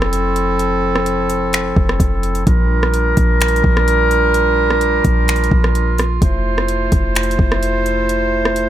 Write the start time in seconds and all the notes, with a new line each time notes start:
Already playing: F1 F3 C4 E4 A4
0.02 cross-stick
0.13 closed hi-hat
0.36 closed hi-hat
0.59 closed hi-hat
0.96 cross-stick
1.06 closed hi-hat
1.30 closed hi-hat
1.53 finger snap, closed hi-hat
1.76 F1, kick
1.89 cross-stick
2.00 F1, kick, closed hi-hat
2.23 closed hi-hat
2.35 closed hi-hat
2.47 A#1 G3 D4 F4 A#4, kick, closed hi-hat
2.83 cross-stick
2.94 closed hi-hat
3.17 A#1, kick, closed hi-hat
3.41 finger snap, closed hi-hat
3.48 closed hi-hat
3.56 closed hi-hat
3.64 A#1, kick
3.77 cross-stick
3.88 closed hi-hat
4.11 closed hi-hat
4.34 closed hi-hat
4.70 cross-stick
4.81 closed hi-hat
5.05 A#1, kick, closed hi-hat
5.28 finger snap, closed hi-hat
5.36 closed hi-hat
5.44 closed hi-hat
5.51 A#1, kick
5.64 cross-stick
5.75 closed hi-hat
5.98 cross-stick, closed hi-hat
6.22 F1 A3 E4 C5, kick, closed hi-hat
6.58 cross-stick
6.68 closed hi-hat
6.92 F1, kick, closed hi-hat
7.15 finger snap, closed hi-hat
7.23 closed hi-hat
7.31 closed hi-hat
7.39 F1, kick
7.52 cross-stick
7.63 closed hi-hat
7.86 closed hi-hat
8.09 closed hi-hat
8.45 cross-stick
8.56 closed hi-hat